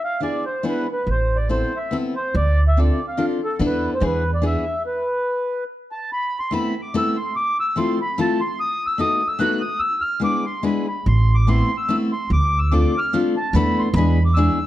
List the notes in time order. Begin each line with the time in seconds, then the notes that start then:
0.04 F5
0.20 B3 D4 E4 G#4 D5
0.45 C5
0.63 B3 D4 E4 G#4
0.68 B4
0.93 B4
1.07 A1 C5
1.36 D5
1.49 B3 C4 E4 A4 C5
1.77 E5
1.91 B3 C4 E4 A4
2.16 C5
2.34 D2 D5
2.68 E5
2.77 C4 D4 F4 A4 D5
3.08 F5
3.17 C4 D4 F4 A4
3.44 A4
3.59 E2 B3 D4 E4 A4
3.66 B4
3.94 C5
4.00 E2 B3 D4 E4 G#4
4.06 B4
4.34 D5
4.42 B3 D4 E4 G#4
4.46 E5
4.86 B4
5.92 A5
6.13 B5
6.39 C6
6.51 A3 B3 C4 E4 A4 B5
6.82 D6
6.94 A3 B3 C4 E4 A4 E6
7.16 C6
7.36 D6
7.60 E6
7.76 A3 C4 E4 F4 A4 C6
8.02 B5
8.18 A3 C4 E4 F4 A4 A5
8.41 C6
8.60 D#6
8.87 E6
8.98 A3 B3 D#4 F#4 A4 D#6
9.28 E6
9.39 A3 B3 D#4 F#4 A4 F#6
9.61 D#6
9.80 E6
10.01 F6
10.20 G#3 B3 D4 E4 G#4
10.24 D6
10.45 C6
10.63 G#3 B3 D4 E4 G#4 B5
10.88 B5
11.06 A1 C6
11.35 D6
11.47 A3 B3 C4 E4 A4 C6
11.77 E6
11.89 A3 B3 C4 E4 A4
12.12 C6
12.30 D2 D6
12.58 E6
12.71 A3 C4 D4 F4 A4 D6
12.98 F6
13.13 A3 C4 D4 F4 A4
13.37 A5
13.53 E2 A3 B3 D4 E4 A4 B5
13.79 C6
13.94 E2 G#3 B3 D4 E4 B5
13.98 G#4
14.25 D6
14.34 G#3 B3 D4 E4 E6
14.38 G#4